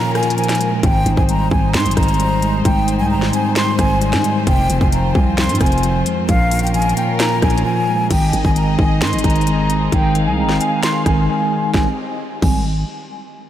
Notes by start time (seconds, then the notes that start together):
Already playing: A#2 D#3 F3 A#3 C#4 F4 A#4 A#5
0.15 A#2 G#5, cross-stick, closed hi-hat
0.23 closed hi-hat
0.30 closed hi-hat
0.38 F3 G#5, closed hi-hat
0.44 closed hi-hat
0.49 finger snap, snare, closed hi-hat
0.55 closed hi-hat
0.61 G#3, closed hi-hat
0.83 G#1 G#2 D#3 D#4 C5 G5, kick, closed hi-hat
1.06 G#1 G#2, closed hi-hat
1.17 G#1 G#5, kick
1.29 G3 A#5, closed hi-hat
1.51 G#1 C4 G#5, kick
1.74 G#2 C6, finger snap, snare, closed hi-hat
1.80 closed hi-hat
1.86 G#1, closed hi-hat
1.91 closed hi-hat
1.97 G#1 G#2 A#5, kick, cross-stick, closed hi-hat
2.03 closed hi-hat
2.08 closed hi-hat
2.14 closed hi-hat
2.20 G3, closed hi-hat
2.42 G#3, closed hi-hat
2.65 G#1 G#2 G5, kick, closed hi-hat
2.88 G#2, closed hi-hat
2.99 C2 G#5
3.11 G3 A#5
3.16 G#1
3.22 snare
3.33 C4 G#5, closed hi-hat
3.56 G#2 C6, finger snap, snare, closed hi-hat
3.79 G#1 G#2 G#5, kick, cross-stick, closed hi-hat
4.02 G3 G#5, closed hi-hat
4.13 G#2, finger snap, snare, closed hi-hat
4.24 G#3, closed hi-hat
4.47 F1 F2 C4 F4 G5, kick, closed hi-hat
4.70 F1 F2, closed hi-hat
4.81 F1 G#5, kick
4.92 F3 A#5, closed hi-hat
5.15 C2 C4 G#5, kick
5.38 F2 C6, finger snap, snare, closed hi-hat
5.44 closed hi-hat
5.49 G#2, closed hi-hat
5.55 closed hi-hat
5.60 F1 F2 G#5, kick, cross-stick, closed hi-hat
5.66 closed hi-hat
5.72 closed hi-hat
5.78 closed hi-hat
5.83 F3, closed hi-hat
6.06 G#3, closed hi-hat
6.29 A#1 A#2 C#4 F4 A#4 F5, kick, closed hi-hat
6.51 A#2, closed hi-hat, open hi-hat
6.59 G5, closed hi-hat
6.67 closed hi-hat
6.74 F3 G#5, closed hi-hat
6.82 closed hi-hat
6.89 closed hi-hat
6.97 A#3 G5, closed hi-hat
7.19 A#2 A#5, finger snap, snare, closed hi-hat
7.42 A#1 A#2 G#5, kick, cross-stick, closed hi-hat
7.50 closed hi-hat
7.58 closed hi-hat
7.65 F3 G#5
7.88 G#3
8.11 G#1 D#3 C4 D#4 G#4 D#5 G5, kick, closed hi-hat, crash
8.33 G#1 D#3, closed hi-hat
8.45 G#1 G#5, kick
8.56 G#3 A#5, closed hi-hat
8.79 G#1 D#4 G#5, kick
9.01 G#2 D#3 C6, finger snap, snare, closed hi-hat
9.07 closed hi-hat
9.13 G#1, closed hi-hat
9.19 closed hi-hat
9.24 G#1 D#3 A#5, kick, closed hi-hat
9.30 closed hi-hat
9.36 closed hi-hat
9.41 closed hi-hat
9.47 G#3, closed hi-hat
9.70 C4, closed hi-hat
9.92 G#1 D#3 F5 G5, kick, closed hi-hat
10.15 D#3, closed hi-hat
10.27 C2 G#5
10.38 G#3 A#5
10.44 G#1
10.49 snare
10.60 D#4 G#5, closed hi-hat
10.83 D#3 C6, finger snap, snare, closed hi-hat
11.06 G#1 D#3 G#5, kick, cross-stick, closed hi-hat
11.29 G#3 G#5
11.52 C4
11.74 G#1 D#3 G3 G#3 C4 G4 G#4 D#5 G#5, kick, snare
12.42 G#1 D#3 G3 G#3 C4 G#5, kick, crash